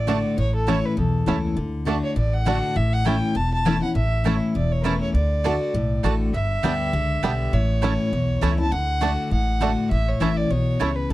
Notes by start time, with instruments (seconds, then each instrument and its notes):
Already playing: upright bass A1, steel-string acoustic guitar A2, fiddle D5
0.07 steel-string acoustic guitar D3 A3 D4 F#4, mandolin A3 F#4 D5 A5, five-string banjo A3 D4
0.38 upright bass A1, steel-string acoustic guitar A2, fiddle C#5
0.55 fiddle A4
0.67 steel-string acoustic guitar E3 A3 C#4 E4, mandolin A3 E4 C#5 A5, five-string banjo A3 C#4 E4, fiddle C#5
0.85 fiddle B4
0.97 upright bass B1, steel-string acoustic guitar E2, fiddle A4
1.26 upright bass C#2, steel-string acoustic guitar E3 A3 C#4 E4, mandolin A3 E4 C#5 A5, five-string banjo A3 C#4 E4
1.57 upright bass D2, steel-string acoustic guitar D3
1.85 steel-string acoustic guitar D3 A3 D4 F#4, mandolin A3 F#4 D5 A5, five-string banjo A3 D4
2.03 fiddle C#5
2.16 upright bass A1, steel-string acoustic guitar A2, fiddle D5
2.34 fiddle F#5
2.45 steel-string acoustic guitar D3 A3 D4 F#4, mandolin A3 F#4 D5 A5, five-string banjo A3 D4
2.76 upright bass A1, steel-string acoustic guitar A2, fiddle E5
2.93 fiddle F#5
3.05 steel-string acoustic guitar E3 A3 C#4 E4, mandolin A3 E4 C#5 A5, five-string banjo A3 C#4 E4, fiddle G5
3.35 upright bass E1, steel-string acoustic guitar E2, fiddle A5
3.53 fiddle A5
3.65 steel-string acoustic guitar E3 A3 C#4 E4, mandolin A3 E4 C#5 A5, five-string banjo A3 C#4 E4
3.81 steel-string acoustic guitar C#4 E4, fiddle F#5
3.95 upright bass A1, steel-string acoustic guitar A2, fiddle E5
4.24 steel-string acoustic guitar E3 A3 C#4 E4, mandolin A3 E4 C#5 A5, five-string banjo A3 C#4 E4
4.55 upright bass E1, steel-string acoustic guitar E2, fiddle D5
4.72 fiddle C#5
4.81 steel-string acoustic guitar E3 A3, mandolin A3 E4 C#5 A5, fiddle A#4 B4
4.85 five-string banjo A3 C#4 E4, steel-string acoustic guitar C#4 E4
5.01 fiddle C#5
5.14 upright bass D2, steel-string acoustic guitar D3, fiddle D5
5.44 steel-string acoustic guitar D3 A3 D4 F#4, mandolin A3 F#4 D5 A5, five-string banjo A3 D4
5.74 upright bass B1, steel-string acoustic guitar A2
6.03 upright bass A1, steel-string acoustic guitar D3 A3 D4 F#4, mandolin A3 F#4 D5 A5, five-string banjo A3 D4
6.33 upright bass G1, fiddle E5
6.63 upright bass D2, steel-string acoustic guitar D3 G3 B3 G4, five-string banjo G3 B3 D4, mandolin B3 G4 D5 G5
6.93 upright bass C#2, steel-string acoustic guitar D3
7.23 upright bass B1, steel-string acoustic guitar D3 G3 B3 G4, five-string banjo G3 B3 D4, mandolin B3 G4 D5 G5
7.53 upright bass A1, steel-string acoustic guitar A2, fiddle C#5
7.82 steel-string acoustic guitar E3 A3 C#4 E4, mandolin A3 E4 C#5 A5, five-string banjo A3 C#4 E4
8.12 upright bass B1, steel-string acoustic guitar E2
8.41 upright bass C#2, steel-string acoustic guitar E3 A3 C#4 E4, mandolin A3 E4 C#5 A5, five-string banjo A3 C#4 E4
8.58 steel-string acoustic guitar C#4 E4, fiddle A5
8.72 upright bass D2, fiddle F#5
9.01 steel-string acoustic guitar D3 A3 D4 F#4, mandolin A3 F#4 D5 A5, five-string banjo A3 D4
9.31 upright bass A1, steel-string acoustic guitar A2, fiddle F#5
9.60 steel-string acoustic guitar D3 A3 D4 F#4, mandolin A3 F#4 D5 A5, five-string banjo A3 D4
9.91 upright bass A1, steel-string acoustic guitar A2, fiddle E5
10.08 fiddle C#5
10.20 upright bass A1, steel-string acoustic guitar E3 A3 C#4 E4, mandolin A3 E4 C#5 A5, five-string banjo A3 C#4 E4, fiddle E5
10.36 fiddle D5
10.50 upright bass B1, steel-string acoustic guitar B2, fiddle C#5
10.80 upright bass C#2, steel-string acoustic guitar C#3, mandolin A3 E4 C#5 A5, five-string banjo A3 C#4 E4
10.96 fiddle B4
11.10 upright bass D2, steel-string acoustic guitar D3, fiddle A4